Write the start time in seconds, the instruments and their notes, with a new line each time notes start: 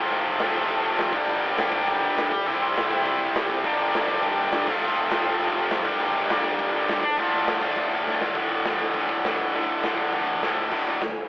Already playing: distorted electric guitar F2 C3 F3 A3 C4
0.00 distorted electric guitar F4
0.09 picked electric bass F1, crash
0.25 picked electric bass F1
0.39 picked electric bass F1, distorted electric guitar F2 C3 F3 A3 C4 F4, snare, crash
0.54 kick
0.68 picked electric bass F1, kick, crash
0.98 picked electric bass F2, snare, crash
1.13 picked electric bass G1, distorted electric guitar G2 D3 G3 A#3 D4 G4, kick
1.27 picked electric bass G1, crash
1.43 picked electric bass G1
1.57 picked electric bass G1, distorted electric guitar G2 D3 G3 A#3 D4 G4, snare, crash
1.72 kick
1.87 picked electric bass G1, kick, crash
2.17 picked electric bass G2, snare, crash
2.32 picked electric bass G1, kick
2.46 picked electric bass C2, distorted electric guitar C3 G3 C4 E4 G4 C5, kick, crash
2.61 picked electric bass C2
2.76 picked electric bass C2, snare, crash
2.91 distorted electric guitar C3 G3 C4 E4 G4 C5, kick
3.05 picked electric bass C2, kick, crash
3.35 picked electric bass C3, snare, crash
3.50 picked electric bass C2, kick
3.64 picked electric bass G1, distorted electric guitar G2 D3 G3 A#3 D4 G4, kick, crash
3.79 picked electric bass G1
3.94 picked electric bass G1, snare, crash
4.08 distorted electric guitar G2 D3 G3 A#3 D4 G4, kick
4.23 picked electric bass G1, kick, crash
4.52 picked electric bass G2, snare, crash
4.67 picked electric bass F1, distorted electric guitar F2 C3 F3 A3 C4 F4, kick, crash
4.82 picked electric bass F1, crash
4.97 picked electric bass F1
5.11 picked electric bass F1, distorted electric guitar F2 C3 F3 A3 C4 F4, snare, crash
5.26 kick
5.40 picked electric bass F1, kick, crash
5.70 picked electric bass F2, snare, crash
5.85 picked electric bass G1, distorted electric guitar G2 D3 G3 A#3 D4 G4, kick
6.00 picked electric bass G1, crash
6.16 picked electric bass G1
6.29 picked electric bass G1, distorted electric guitar G2 D3 G3 A#3 D4 G4, snare, crash
6.44 kick
6.59 picked electric bass G1, kick, crash
6.88 picked electric bass G2, snare, crash
7.03 picked electric bass G1, kick
7.17 picked electric bass D1, distorted electric guitar D2 A2 D3 A3 F4, kick, crash
7.32 picked electric bass D1
7.47 picked electric bass D1, snare, crash
7.61 distorted electric guitar D2 A2 D3 A3 F4, kick
7.76 picked electric bass D1, kick, crash
8.06 picked electric bass D2, snare
8.21 picked electric bass D1, snare
8.35 picked electric bass D1, distorted electric guitar D2 A2 D3, kick, open hi-hat
8.50 picked electric bass D1
8.65 picked electric bass A1, distorted electric guitar D2 A2 D3, snare, open hi-hat
8.79 picked electric bass D1, kick
8.94 picked electric bass D1, distorted electric guitar D2 A2 D3, kick, open hi-hat
9.09 kick
9.24 picked electric bass A1, distorted electric guitar D2 A2 D3, snare, open hi-hat
9.38 picked electric bass D1, kick
9.53 picked electric bass D1, distorted electric guitar D2 A2 D3, kick, open hi-hat
9.69 picked electric bass D1
9.83 picked electric bass D1, distorted electric guitar D2 A2 D3, snare, open hi-hat
9.97 picked electric bass D1, kick
10.12 picked electric bass A1, distorted electric guitar D2 A2 D3, kick, open hi-hat
10.27 picked electric bass A1, kick
10.42 picked electric bass C2, distorted electric guitar D2 A2 D3, snare, open hi-hat
10.57 picked electric bass C2, kick
10.72 picked electric bass D1, distorted electric guitar D2 A2 D3, kick, crash
10.86 picked electric bass D1, open hi-hat
10.94 kick
11.01 picked electric bass D1, distorted electric guitar D2 A2, snare, open hi-hat
11.15 picked electric bass D1, open hi-hat